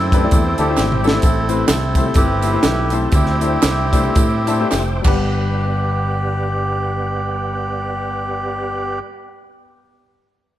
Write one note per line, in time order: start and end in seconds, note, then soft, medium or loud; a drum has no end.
0.00 0.26 F#2 loud
0.00 0.57 C4 medium
0.00 0.58 E4 medium
0.00 0.75 A4 loud
0.00 1.22 C5 medium
0.00 1.22 E5 medium
0.00 1.20 G5 medium
0.00 1.22 D6 medium
0.12 0.20 A3 medium
0.12 0.20 D4 medium
0.12 0.20 E4 medium
0.12 0.20 G4 medium
0.12 0.21 B4 loud
0.12 kick loud
0.12 closed hi-hat medium
0.12 tambourine medium
0.23 0.38 A3 medium
0.23 0.39 D4 medium
0.23 0.39 E4 medium
0.23 0.39 G4 medium
0.23 0.39 D5 medium
0.31 0.55 E2 medium
0.31 kick loud
0.31 closed hi-hat medium
0.31 tambourine medium
0.58 0.75 D2 medium
0.58 0.65 A3 medium
0.58 1.02 C4 medium
0.58 0.66 D4 medium
0.58 1.01 E4 medium
0.58 0.66 E4 medium
0.58 1.06 G4 loud
0.58 0.66 G4 medium
0.58 0.66 A4 loud
0.58 0.77 A5 medium
0.58 closed hi-hat medium
0.58 tambourine medium
0.69 0.84 A3 medium
0.69 0.84 D4 medium
0.69 0.85 E4 medium
0.69 0.85 G4 medium
0.69 0.85 C5 loud
0.77 1.17 G#1 loud
0.77 1.03 G5 medium
0.77 snare medium
0.77 clap medium
0.77 tambourine medium
0.92 mid tom medium
1.02 1.18 A3 medium
1.02 1.68 C4 medium
1.02 1.18 D4 medium
1.02 1.67 E4 medium
1.02 1.18 E4 medium
1.02 1.18 G4 medium
1.02 1.51 A4 loud
1.02 1.19 A4 loud
1.02 1.23 E5 medium
1.02 tambourine medium
1.08 snare loud
1.22 1.63 A1 loud
1.22 1.92 A2 medium
1.22 3.11 A4 medium
1.22 5.01 E5 medium
1.22 5.01 G5 medium
1.22 kick loud
1.22 closed hi-hat medium
1.22 tambourine medium
1.49 1.64 A3 medium
1.49 1.64 C4 medium
1.49 1.64 E4 medium
1.49 1.64 G4 medium
1.49 1.71 B4 loud
1.49 1.64 C5 medium
1.49 closed hi-hat medium
1.49 tambourine medium
1.68 2.09 C2 loud
1.68 2.59 C4 medium
1.68 2.15 E4 medium
1.68 2.18 A4 loud
1.68 snare loud
1.68 clap loud
1.68 closed hi-hat loud
1.68 tambourine loud
1.95 2.03 A3 medium
1.95 2.04 C4 medium
1.95 2.04 E4 medium
1.95 2.04 G4 medium
1.95 2.04 C5 medium
1.95 kick loud
1.95 closed hi-hat medium
1.95 tambourine medium
2.05 2.22 A3 medium
2.05 2.22 C4 medium
2.05 2.22 E4 medium
2.05 2.22 G4 medium
2.05 2.22 A4 medium
2.14 2.56 G1 medium
2.14 3.09 E4 medium
2.14 3.09 G4 medium
2.14 2.94 B4 loud
2.14 kick loud
2.14 closed hi-hat medium
2.14 tambourine medium
2.42 2.51 A3 medium
2.42 2.51 C4 medium
2.42 2.51 E4 medium
2.42 2.51 G4 medium
2.42 2.51 C5 medium
2.42 closed hi-hat medium
2.42 tambourine medium
2.52 2.69 A3 medium
2.52 2.69 C4 medium
2.52 2.69 E4 medium
2.52 2.70 G4 medium
2.52 2.70 C5 medium
2.63 3.06 B1 loud
2.63 snare loud
2.63 clap medium
2.63 closed hi-hat loud
2.63 tambourine medium
2.90 3.07 A3 medium
2.90 3.07 C4 medium
2.90 3.07 E4 medium
2.90 3.07 G4 medium
2.90 3.14 A4 medium
2.90 3.07 C5 medium
2.90 closed hi-hat medium
2.90 tambourine medium
3.12 3.56 D2 loud
3.12 3.90 D3 medium
3.12 4.68 C4 medium
3.12 4.68 E4 medium
3.12 4.69 G4 loud
3.12 5.04 C5 medium
3.12 5.03 D6 medium
3.12 kick loud
3.12 closed hi-hat medium
3.12 tambourine medium
3.26 snare soft
3.41 3.57 A3 medium
3.41 3.57 D4 medium
3.41 3.57 E4 medium
3.41 3.57 G4 medium
3.41 3.57 C5 medium
3.41 closed hi-hat medium
3.41 tambourine medium
3.63 4.09 C2 loud
3.63 snare loud
3.63 clap loud
3.63 closed hi-hat loud
3.63 tambourine medium
3.93 4.01 A3 medium
3.93 4.01 D4 medium
3.93 4.02 E4 medium
3.93 4.01 G4 medium
3.93 4.02 C5 loud
3.93 kick loud
3.93 closed hi-hat medium
3.93 tambourine medium
4.04 4.23 A3 medium
4.04 4.23 D4 medium
4.04 4.23 E4 medium
4.04 4.23 G4 medium
4.04 4.23 C5 medium
4.16 4.64 A2 loud
4.16 kick loud
4.16 closed hi-hat medium
4.16 tambourine medium
4.47 4.56 A3 medium
4.47 4.56 D4 medium
4.47 4.56 E4 medium
4.47 4.56 G4 medium
4.47 4.57 C5 medium
4.47 4.70 A5 medium
4.47 closed hi-hat medium
4.47 tambourine medium
4.60 4.79 A3 medium
4.60 4.79 D4 medium
4.60 4.79 E4 medium
4.60 4.79 G4 medium
4.60 4.80 C5 medium
4.71 5.01 F1 medium
4.71 5.03 G5 medium
4.71 snare medium
4.71 clap medium
4.71 tambourine medium
5.02 8.99 G1 medium
5.02 8.99 G2 medium
5.02 8.96 G3 medium
5.02 9.00 B3 medium
5.02 8.98 D4 medium
5.02 8.99 G4 medium
5.02 9.00 G4 medium
5.02 9.00 D5 medium
5.02 8.99 F#5 medium
5.02 9.00 F#5 medium
5.02 kick loud
5.02 clap medium
5.02 crash medium
5.07 9.02 B4 medium